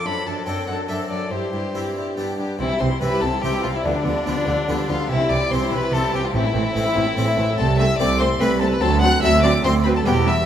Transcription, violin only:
0.06 0.28 B5 medium
0.27 0.46 A5 medium
0.46 0.67 G5 medium
0.67 0.75 F#5 medium
0.88 0.96 E5 medium
1.09 1.32 D5 medium
1.30 2.16 C5 medium
2.60 2.79 E4 medium
2.80 2.88 C5 medium
3.00 3.23 B4 medium
3.21 3.43 A4 medium
3.42 3.63 G4 medium
3.63 3.68 F4 medium
3.74 3.86 E4 medium
3.85 4.91 D4 medium
4.89 5.09 F4 medium
5.10 5.31 E4 medium
5.29 5.53 D5 medium
5.51 5.72 C5 medium
5.73 5.94 B4 medium
5.93 6.13 A4 medium
6.14 6.26 G4 medium
6.24 6.33 F4 medium
6.34 7.55 E4 loud
7.57 7.77 A4 medium
7.78 7.98 E5 medium
7.98 8.18 D5 loud
8.19 8.27 C5 medium
8.40 8.60 B4 loud
8.61 8.69 A4 medium
8.70 8.82 B4 medium
8.81 9.00 A4 loud
9.01 9.22 F#5 loud
9.23 9.43 E5 loud
9.43 9.51 D5 medium
9.64 9.72 C5 loud
9.86 9.96 B4 medium
9.96 10.08 A4 medium
10.07 10.29 G4 medium
10.27 10.46 E5 medium

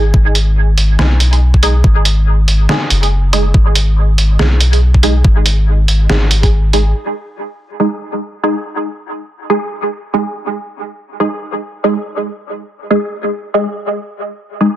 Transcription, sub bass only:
0.00 0.12 G#1 loud
0.14 0.98 G#1 loud
0.99 1.83 B1 medium
1.84 2.68 G#1 loud
2.90 3.53 F#1 medium
3.54 4.38 G#1 medium
4.39 5.23 B1 loud
5.25 6.08 G#1 loud
6.10 6.93 G#1 loud

